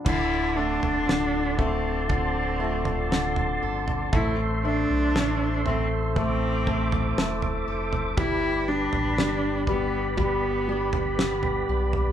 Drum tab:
CC |x---------------|----------------|----------------|
SD |----o-------o---|----o-------o---|----o-------o---|
FT |o--o--o-o--o-o-o|o-----o-o--o-o-o|o--o--o-o--o-o-o|
BD |o-----o-o-------|o-------o-o-----|o-----o-o-------|